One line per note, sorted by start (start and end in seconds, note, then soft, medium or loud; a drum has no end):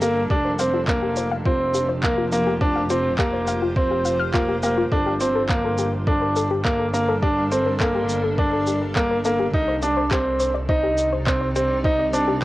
0.00 0.27 G1 medium
0.00 0.30 G3 medium
0.00 0.21 A#3 medium
0.00 1.23 D4 medium
0.00 0.08 G4 medium
0.00 1.07 A4 medium
0.00 1.41 A#4 medium
0.00 shaker medium
0.30 4.89 F1 medium
0.30 4.92 F3 medium
0.30 0.50 D4 loud
0.30 0.37 G4 medium
0.30 kick loud
0.43 6.53 F4 medium
0.43 0.51 C5 medium
0.53 6.15 G4 medium
0.59 0.79 C4 medium
0.59 0.63 F5 loud
0.59 shaker medium
0.74 0.80 F4 medium
0.88 1.28 A#3 medium
0.88 kick loud
0.88 clap medium
1.02 1.09 G4 medium
1.16 1.23 C5 medium
1.16 6.77 C5 medium
1.16 shaker medium
1.31 1.35 F5 loud
1.46 1.85 C4 medium
1.46 1.52 F4 medium
1.46 kick loud
1.74 1.81 G4 medium
1.74 shaker medium
1.89 1.95 C5 medium
2.03 2.23 A#3 medium
2.03 2.07 F5 loud
2.03 kick loud
2.03 clap medium
2.18 2.24 F4 medium
2.32 2.52 A#3 medium
2.32 shaker medium
2.47 2.53 G4 medium
2.61 2.81 D4 loud
2.61 2.68 C5 medium
2.61 kick loud
2.76 2.79 F5 loud
2.90 3.10 C4 medium
2.90 2.96 F4 medium
2.90 shaker medium
3.18 3.58 A#3 medium
3.18 3.25 G4 medium
3.18 kick loud
3.18 clap medium
3.33 3.40 C5 medium
3.47 3.52 F5 loud
3.47 shaker medium
3.62 3.69 F4 medium
3.76 4.16 C4 medium
3.76 kick loud
3.91 3.97 G4 medium
4.05 4.09 F5 medium
4.05 shaker medium
4.19 4.26 F6 loud
4.34 4.54 A#3 medium
4.34 4.44 F4 loud
4.34 kick loud
4.34 clap medium
4.48 4.52 G4 medium
4.63 4.83 A#3 medium
4.63 4.70 G5 medium
4.63 shaker medium
4.78 4.81 F4 loud
4.92 9.50 G1 medium
4.92 9.53 G3 medium
4.92 5.12 D4 medium
4.92 4.98 A4 medium
4.92 kick loud
5.04 9.54 D4 medium
5.04 5.13 G4 medium
5.20 5.40 C4 medium
5.20 shaker medium
5.35 5.42 A4 medium
5.35 10.40 A4 medium
5.49 5.89 A#3 medium
5.49 5.56 A#4 medium
5.49 kick loud
5.49 clap medium
5.61 5.71 A4 medium
5.61 10.25 A#4 medium
5.78 5.85 G4 medium
5.78 shaker medium
6.07 6.47 D4 medium
6.07 6.14 A4 medium
6.07 kick loud
6.22 6.28 A#4 medium
6.36 6.43 A4 medium
6.36 shaker medium
6.51 6.57 G4 medium
6.65 6.84 A#3 medium
6.65 kick loud
6.65 clap medium
6.79 6.86 A4 medium
6.93 7.13 A#3 medium
6.93 7.00 A#4 medium
6.93 shaker medium
7.08 7.15 A4 medium
7.22 7.42 D4 loud
7.22 7.29 G4 medium
7.22 kick loud
7.52 7.71 C4 medium
7.52 7.58 A4 medium
7.52 shaker medium
7.66 7.72 A#4 medium
7.80 8.20 A#3 medium
7.80 7.87 A4 medium
7.80 kick loud
7.80 clap medium
7.95 8.01 G4 medium
8.09 shaker medium
8.24 8.30 A4 medium
8.38 8.78 D4 medium
8.38 8.45 A#4 medium
8.38 kick loud
8.53 8.59 A4 medium
8.67 8.73 G4 medium
8.67 shaker medium
8.95 9.16 A#3 medium
8.95 9.02 A4 medium
8.95 kick loud
8.95 clap medium
9.11 9.17 A#4 medium
9.24 9.45 A#3 medium
9.24 9.31 A4 medium
9.24 shaker medium
9.39 9.46 G4 medium
9.53 12.44 C2 medium
9.53 12.44 C3 medium
9.53 9.74 D#4 loud
9.53 kick loud
9.62 12.44 D#4 medium
9.68 9.74 C5 medium
9.82 10.02 D4 medium
9.82 9.89 D5 medium
9.82 shaker medium
9.86 12.44 C4 medium
9.97 10.03 C5 medium
9.97 12.44 D5 medium
10.11 10.51 C4 medium
10.11 10.17 G4 medium
10.11 kick loud
10.11 clap medium
10.40 10.46 C5 medium
10.40 shaker medium
10.54 10.61 D5 medium
10.69 11.08 D#4 medium
10.69 10.75 C5 medium
10.69 kick loud
10.83 10.90 G4 medium
10.98 shaker medium
11.13 11.19 C5 medium
11.27 11.46 C4 medium
11.27 11.33 D5 medium
11.27 kick loud
11.27 clap medium
11.41 11.47 C5 medium
11.56 11.75 C4 medium
11.56 11.62 G4 medium
11.56 shaker medium
11.84 12.04 D#4 loud
11.84 11.91 C5 medium
11.84 kick loud
11.99 12.05 D5 medium
12.13 12.33 D4 medium
12.13 12.20 C5 medium
12.13 shaker medium
12.28 12.34 G4 medium